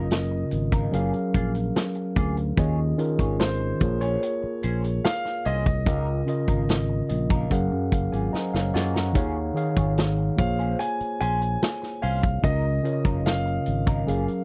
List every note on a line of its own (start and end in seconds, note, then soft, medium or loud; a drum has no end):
0.00 0.43 F#1 medium
0.00 0.95 C#3 medium
0.00 0.92 C#4 medium
0.00 0.95 F4 medium
0.00 0.94 A#4 medium
0.00 0.48 D#5 medium
0.00 0.95 D#5 medium
0.11 snare loud
0.11 closed hi-hat medium
0.31 muted clean electric guitar stroke soft
0.51 0.87 G#1 medium
0.51 closed hi-hat medium
0.72 0.93 D#4 medium
0.72 0.92 F4 medium
0.72 0.94 A#4 medium
0.72 kick medium
0.72 closed hi-hat medium
0.91 1.11 F#1 medium
0.91 2.24 F#3 medium
0.91 1.14 A#3 medium
0.91 2.24 C#4 medium
0.91 1.13 F4 medium
0.91 2.25 G#4 medium
0.91 1.13 G#4 medium
0.91 2.25 A#4 medium
0.91 2.26 F5 loud
0.91 closed hi-hat medium
1.13 muted clean electric guitar stroke soft
1.13 muted fingered electric bass stroke soft
1.13 closed hi-hat soft
1.34 1.70 A#1 medium
1.34 1.51 A#3 soft
1.34 1.51 F4 medium
1.34 1.52 G#4 medium
1.34 kick medium
1.34 closed hi-hat medium
1.55 muted clean electric guitar stroke soft
1.55 closed hi-hat soft
1.75 muted clean electric guitar stroke soft
1.75 snare loud
1.75 closed hi-hat medium
1.95 muted clean electric guitar stroke soft
1.95 closed hi-hat soft
2.16 2.52 D2 medium
2.16 2.38 A#3 medium
2.16 2.37 F4 medium
2.16 2.36 G#4 medium
2.16 kick medium
2.16 closed hi-hat medium
2.37 muted clean electric guitar stroke soft
2.37 closed hi-hat soft
2.56 2.93 D#2 medium
2.56 2.90 D#3 medium
2.56 2.90 C#4 medium
2.56 2.79 F4 medium
2.56 2.91 F4 medium
2.56 2.79 G#4 medium
2.56 2.91 G#4 medium
2.56 2.79 C#5 medium
2.56 2.92 D#5 medium
2.56 kick loud
2.56 closed hi-hat medium
2.98 3.80 D#3 medium
2.98 3.81 C#4 medium
2.98 3.80 F4 medium
2.98 3.81 G#4 medium
2.98 3.81 A#4 medium
2.98 muted clean electric guitar stroke soft
2.98 closed hi-hat medium
3.19 3.72 G#1 medium
3.19 3.36 F4 soft
3.19 3.36 G#4 soft
3.19 3.36 C#5 soft
3.19 kick medium
3.19 closed hi-hat soft
3.40 4.03 C5 medium
3.40 muted clean electric guitar stroke soft
3.40 snare loud
3.40 closed hi-hat medium
3.60 muted clean electric guitar stroke soft
3.80 4.16 A#1 medium
3.80 5.12 A#3 medium
3.80 5.12 F4 medium
3.80 5.13 G#4 medium
3.80 5.13 A#4 medium
3.80 5.14 C#5 medium
3.80 kick medium
3.80 closed hi-hat medium
4.01 4.21 C#4 medium
4.01 4.21 G#4 medium
4.01 4.22 C5 medium
4.01 5.07 C#5 medium
4.01 closed hi-hat soft
4.22 muted clean electric guitar stroke soft
4.22 closed hi-hat medium
4.43 muted clean electric guitar stroke soft
4.43 muted fingered electric bass stroke soft
4.63 4.99 A#1 medium
4.63 4.84 C#4 medium
4.63 4.83 G#4 medium
4.63 4.83 C5 medium
4.63 closed hi-hat medium
4.84 muted clean electric guitar stroke soft
4.84 closed hi-hat soft
5.05 5.47 F5 medium
5.05 snare loud
5.05 closed hi-hat medium
5.25 muted clean electric guitar stroke soft
5.25 snare soft
5.45 5.87 C2 medium
5.45 5.66 C#4 medium
5.45 5.65 G#4 medium
5.45 5.65 C5 medium
5.45 7.06 D#5 medium
5.45 closed hi-hat medium
5.66 muted clean electric guitar stroke soft
5.66 kick medium
5.66 closed hi-hat soft
5.85 6.21 C#2 medium
5.85 6.18 C#3 medium
5.85 6.19 C#4 medium
5.85 6.07 D#4 medium
5.85 6.19 F4 medium
5.85 6.07 F4 medium
5.85 6.08 A#4 medium
5.85 6.20 A#4 medium
5.85 6.20 D#5 medium
5.85 kick loud
5.85 closed hi-hat medium
6.26 7.50 C#3 medium
6.26 7.49 C#4 medium
6.26 7.51 F4 medium
6.26 7.51 A#4 medium
6.26 7.08 D#5 medium
6.26 muted clean electric guitar stroke soft
6.26 closed hi-hat medium
6.48 7.00 G#1 medium
6.48 6.65 D#4 soft
6.48 6.65 F4 medium
6.48 6.65 A#4 medium
6.48 kick medium
6.48 closed hi-hat soft
6.69 muted clean electric guitar stroke soft
6.69 snare loud
6.69 closed hi-hat medium
6.89 muted clean electric guitar stroke soft
7.09 7.45 A#1 medium
7.09 7.48 D#5 medium
7.09 closed hi-hat medium
7.30 7.51 D#4 medium
7.30 7.50 F4 medium
7.30 7.51 A#4 medium
7.30 kick medium
7.30 closed hi-hat medium
7.50 7.68 F#1 medium
7.50 8.82 F#3 medium
7.50 8.82 C#4 medium
7.50 8.83 G#4 medium
7.50 8.83 A#4 medium
7.50 7.91 F5 medium
7.50 7.89 F#5 medium
7.50 muted clean electric guitar stroke soft
7.50 kick medium
7.50 closed hi-hat medium
7.71 7.89 F#2 medium
7.71 muted clean electric guitar stroke soft
7.92 8.10 F#1 medium
7.92 8.11 F5 medium
7.92 kick medium
7.92 closed hi-hat medium
8.12 8.30 G#1 medium
8.12 8.32 A#3 soft
8.12 8.32 F4 medium
8.12 8.32 G#4 medium
8.12 8.32 G#5 medium
8.12 closed hi-hat soft
8.33 8.53 C5 soft
8.33 8.53 D#5 medium
8.33 8.71 A#5 medium
8.33 muted clean electric guitar stroke soft
8.33 muted fingered electric bass stroke soft
8.33 snare medium
8.54 8.71 F#1 medium
8.54 8.73 C#5 medium
8.54 8.73 F5 medium
8.54 muted clean electric guitar stroke soft
8.54 snare medium
8.74 9.15 F#2 medium
8.74 8.95 A#3 medium
8.74 8.94 F4 medium
8.74 8.94 G#4 medium
8.74 8.94 D#5 soft
8.74 8.93 F#5 medium
8.74 9.12 C#6 medium
8.74 snare medium
8.94 9.34 F#5 soft
8.94 9.33 A#5 medium
8.94 muted clean electric guitar stroke soft
8.94 snare medium
9.13 9.50 D#2 medium
9.13 9.47 D#3 medium
9.13 9.47 D#4 medium
9.13 9.36 F4 medium
9.13 9.48 G#4 medium
9.13 9.36 G#4 medium
9.13 9.48 C#5 medium
9.13 9.37 C#5 medium
9.13 9.49 F5 medium
9.13 kick loud
9.13 closed hi-hat medium
9.54 10.37 D#3 medium
9.54 10.38 D#4 medium
9.54 10.37 G#4 medium
9.54 10.39 C#5 medium
9.54 10.39 F5 medium
9.54 muted clean electric guitar stroke soft
9.54 closed hi-hat medium
9.77 10.29 G#1 medium
9.77 9.94 F4 soft
9.77 9.93 G#4 soft
9.77 9.93 C#5 medium
9.77 kick medium
9.77 closed hi-hat medium
9.98 snare loud
9.98 closed hi-hat medium
10.17 muted clean electric guitar stroke soft
10.36 10.73 A#1 loud
10.36 11.69 A#3 medium
10.36 11.69 F4 medium
10.36 11.70 G#4 medium
10.36 11.70 C5 medium
10.36 11.70 C#5 medium
10.36 10.81 F5 medium
10.36 kick medium
10.36 closed hi-hat medium
10.59 10.78 C#4 soft
10.59 10.78 G#4 medium
10.59 10.78 C5 medium
10.59 closed hi-hat medium
10.79 11.18 G#5 medium
10.79 muted clean electric guitar stroke soft
10.79 closed hi-hat medium
11.00 muted clean electric guitar stroke soft
11.00 muted fingered electric bass stroke soft
11.00 closed hi-hat soft
11.21 11.56 A#1 medium
11.21 11.41 C#4 medium
11.21 11.41 G#4 medium
11.21 11.40 C5 medium
11.21 12.05 G#5 loud
11.21 closed hi-hat medium
11.41 muted clean electric guitar stroke soft
11.41 closed hi-hat soft
11.63 snare loud
11.63 closed hi-hat loud
11.82 muted clean electric guitar stroke soft
11.82 snare soft
12.02 12.38 C2 medium
12.02 12.23 C#4 medium
12.02 12.23 G#4 medium
12.02 12.22 C5 medium
12.02 12.45 F5 medium
12.02 open hi-hat medium
12.23 muted clean electric guitar stroke soft
12.23 kick medium
12.23 closed hi-hat soft
12.42 12.79 C#2 medium
12.42 12.76 C#3 medium
12.42 12.76 C#4 medium
12.42 12.64 D#4 medium
12.42 12.76 F4 medium
12.42 12.65 F4 medium
12.42 12.77 A#4 medium
12.42 12.65 A#4 medium
12.42 13.28 D#5 medium
12.42 12.77 D#5 medium
12.42 kick loud
12.42 closed hi-hat medium
12.83 14.07 C#3 medium
12.83 14.06 C#4 medium
12.83 14.08 F4 medium
12.83 14.07 A#4 medium
12.83 12.92 C#5 medium
12.83 muted clean electric guitar stroke soft
12.83 closed hi-hat medium
12.93 14.12 D#5 medium
13.05 13.58 F#1 medium
13.05 13.22 D#4 soft
13.05 13.22 F4 soft
13.05 13.21 A#4 soft
13.05 kick medium
13.05 closed hi-hat soft
13.26 14.44 F5 medium
13.26 muted clean electric guitar stroke soft
13.26 snare loud
13.26 closed hi-hat medium
13.46 muted clean electric guitar stroke soft
13.46 closed hi-hat soft
13.66 14.02 G#1 medium
13.66 closed hi-hat medium
13.87 14.07 D#4 medium
13.87 14.06 F4 medium
13.87 14.08 A#4 medium
13.87 kick medium
13.87 closed hi-hat medium
14.06 14.26 F#1 medium
14.06 14.44 F#3 medium
14.06 14.28 A#3 medium
14.06 14.44 C#4 medium
14.06 14.28 F4 medium
14.06 14.44 G#4 medium
14.06 14.27 G#4 medium
14.06 14.44 A#4 medium
14.06 14.44 F5 medium
14.06 closed hi-hat medium
14.28 muted clean electric guitar stroke soft
14.28 closed hi-hat soft